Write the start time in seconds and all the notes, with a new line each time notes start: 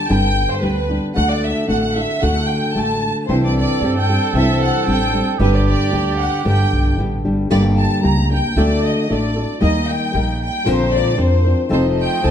0.09 G1 G2 D3 G3 B3 D4 G4 G5
0.51 C5
0.62 D2 G3 B3 D4 G4 B4
0.90 G3 B3 D4 G4
1.15 D2 D3 A3 D4 F#4 A4 F#5
1.31 D5
1.44 E5
1.67 A1 A3 D4 F#4 A4 F#5
1.82 F#5
1.95 D4 F#4 A4 E5
2.22 D2 D3 A3 D4 F#4 A4 F#5
2.48 G5
2.75 A1 A3 D4 F#4 A4 A5
3.27 C2 C3 E3 G3 C4 D4 G4 A4 C5
3.44 D5
3.57 D5
3.81 G2 G3 C4 D4 G4
3.99 G5
4.10 G3 C4 D4 G4
4.33 C2 C3 E3 G3 C4 D4 G4 E5
4.62 F#5
4.87 A1 G3 C4 D4 G4 G5
5.14 G3 C4 D4 G4
5.38 G1 G2 D3 G3 B3 D4 G4 B4
5.55 D5
5.67 D5
5.92 D2 G3 B3 D4 G4
6.19 F#5
6.45 G1 G2 D3 G3 B3 D4 G4 G5
6.73 B1
6.98 A1 G3 B3 D4 G4
7.25 G1 G3 B3 D4 G4
7.50 G1 G2 D3 G3 A#3 D4 G4 D5
7.78 A5
8.03 C#2 G3 A#3 D4 G4 A#5
8.30 G3 A#3 D4 G4 G5
8.56 D2 D3 A3 D4 F#4 A4
8.60 D5
8.86 D#5
9.09 A1 A3 D4 F#4 A4 D5
9.36 D4 F#4 A4
9.61 D#2 D#3 G3 A#3 D#4 A#4 D#5
9.88 G5
10.14 A#1 G3 A#3 D#4 A#4
10.43 G5
10.65 A#1 A#2 D3 F3 C4 D4 A#4 C5
10.94 D5
11.17 F2 F3 C4 D4 A#4 C5
11.44 F3 C4 D4 A#4
11.69 F1 F3 A3 C4 D#4 F4 A4 C5 D#5
12.01 G5
12.22 C2 F3 C4 D#4 A4 A5